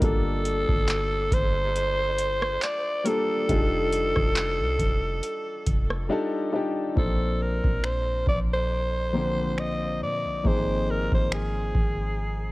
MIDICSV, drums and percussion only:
0, 0, Header, 1, 2, 480
1, 0, Start_track
1, 0, Key_signature, -2, "major"
1, 0, Tempo, 869565
1, 8, Time_signature, 4, 2, 24, 8
1, 6910, End_track
2, 0, Start_track
2, 0, Title_t, "Drums"
2, 9, Note_on_c, 9, 36, 127
2, 9, Note_on_c, 9, 42, 67
2, 64, Note_off_c, 9, 36, 0
2, 65, Note_off_c, 9, 42, 0
2, 249, Note_on_c, 9, 42, 73
2, 305, Note_off_c, 9, 42, 0
2, 380, Note_on_c, 9, 36, 100
2, 435, Note_off_c, 9, 36, 0
2, 485, Note_on_c, 9, 42, 72
2, 489, Note_on_c, 9, 39, 109
2, 540, Note_off_c, 9, 42, 0
2, 544, Note_off_c, 9, 39, 0
2, 726, Note_on_c, 9, 36, 93
2, 729, Note_on_c, 9, 42, 71
2, 782, Note_off_c, 9, 36, 0
2, 784, Note_off_c, 9, 42, 0
2, 970, Note_on_c, 9, 42, 71
2, 1025, Note_off_c, 9, 42, 0
2, 1206, Note_on_c, 9, 42, 80
2, 1261, Note_off_c, 9, 42, 0
2, 1338, Note_on_c, 9, 37, 103
2, 1393, Note_off_c, 9, 37, 0
2, 1449, Note_on_c, 9, 39, 114
2, 1449, Note_on_c, 9, 42, 75
2, 1504, Note_off_c, 9, 39, 0
2, 1505, Note_off_c, 9, 42, 0
2, 1687, Note_on_c, 9, 42, 78
2, 1742, Note_off_c, 9, 42, 0
2, 1927, Note_on_c, 9, 42, 66
2, 1928, Note_on_c, 9, 36, 127
2, 1983, Note_off_c, 9, 36, 0
2, 1983, Note_off_c, 9, 42, 0
2, 2166, Note_on_c, 9, 42, 82
2, 2222, Note_off_c, 9, 42, 0
2, 2295, Note_on_c, 9, 37, 68
2, 2299, Note_on_c, 9, 36, 101
2, 2350, Note_off_c, 9, 37, 0
2, 2354, Note_off_c, 9, 36, 0
2, 2405, Note_on_c, 9, 42, 71
2, 2408, Note_on_c, 9, 39, 120
2, 2460, Note_off_c, 9, 42, 0
2, 2464, Note_off_c, 9, 39, 0
2, 2646, Note_on_c, 9, 36, 94
2, 2648, Note_on_c, 9, 42, 70
2, 2701, Note_off_c, 9, 36, 0
2, 2703, Note_off_c, 9, 42, 0
2, 2888, Note_on_c, 9, 42, 71
2, 2943, Note_off_c, 9, 42, 0
2, 3127, Note_on_c, 9, 42, 76
2, 3128, Note_on_c, 9, 36, 87
2, 3182, Note_off_c, 9, 42, 0
2, 3183, Note_off_c, 9, 36, 0
2, 3257, Note_on_c, 9, 37, 95
2, 3312, Note_off_c, 9, 37, 0
2, 3848, Note_on_c, 9, 36, 117
2, 3903, Note_off_c, 9, 36, 0
2, 4218, Note_on_c, 9, 36, 94
2, 4274, Note_off_c, 9, 36, 0
2, 4327, Note_on_c, 9, 26, 102
2, 4382, Note_off_c, 9, 26, 0
2, 4565, Note_on_c, 9, 36, 88
2, 4620, Note_off_c, 9, 36, 0
2, 5288, Note_on_c, 9, 26, 99
2, 5343, Note_off_c, 9, 26, 0
2, 5767, Note_on_c, 9, 36, 109
2, 5822, Note_off_c, 9, 36, 0
2, 6138, Note_on_c, 9, 36, 95
2, 6194, Note_off_c, 9, 36, 0
2, 6249, Note_on_c, 9, 26, 109
2, 6304, Note_off_c, 9, 26, 0
2, 6486, Note_on_c, 9, 36, 90
2, 6541, Note_off_c, 9, 36, 0
2, 6910, End_track
0, 0, End_of_file